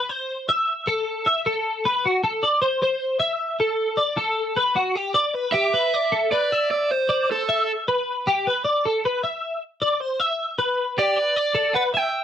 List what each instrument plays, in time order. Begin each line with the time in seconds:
0.09 clean electric guitar C5
0.49 clean electric guitar E5
0.87 clean electric guitar A4
1.26 clean electric guitar E5
1.46 clean electric guitar A4
1.85 clean electric guitar B4
2.06 clean electric guitar F#4
2.24 clean electric guitar A4
2.43 clean electric guitar D5
2.62 clean electric guitar C5
2.82 clean electric guitar C5
3.20 clean electric guitar E5
3.60 clean electric guitar A4
3.97 clean electric guitar D5
4.17 clean electric guitar A4
4.56 clean electric guitar B4
4.76 clean electric guitar F#4
4.96 clean electric guitar G4
5.14 clean electric guitar D5
5.34 clean electric guitar B4
5.52 clean electric guitar G4, overdriven electric guitar E5
5.74 clean electric guitar B4
5.94 clean electric guitar D5
6.12 clean electric guitar A4
6.32 clean electric guitar B4, overdriven electric guitar D5
6.52 clean electric guitar E5
6.71 overdriven electric guitar D5
6.91 overdriven electric guitar C5
7.09 clean electric guitar D5
7.30 overdriven electric guitar A4, clean electric guitar C5
7.49 clean electric guitar E5
7.88 clean electric guitar B4
8.27 clean electric guitar G4
8.47 clean electric guitar B4
8.65 clean electric guitar D5
8.86 clean electric guitar A4
9.05 clean electric guitar B4
9.23 clean electric guitar E5
9.82 clean electric guitar D5
10.00 clean electric guitar C5
10.20 clean electric guitar E5
10.59 clean electric guitar B4
10.98 clean electric guitar G4, overdriven electric guitar D5
11.16 clean electric guitar B4
11.36 clean electric guitar D5
11.55 clean electric guitar A4
11.74 clean electric guitar B4, overdriven electric guitar F#5
11.94 clean electric guitar E5, overdriven electric guitar G5